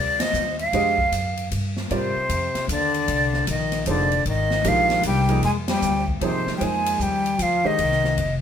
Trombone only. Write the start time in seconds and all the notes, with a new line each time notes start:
1.93 C3
2.70 D3
3.49 D#3
3.88 D3
4.26 D#3
4.66 F3
5.05 G3
5.44 G#3
5.68 G3
6.21 C3
6.56 G3
6.61 G#3
7.00 G3
7.40 F3
7.65 D#3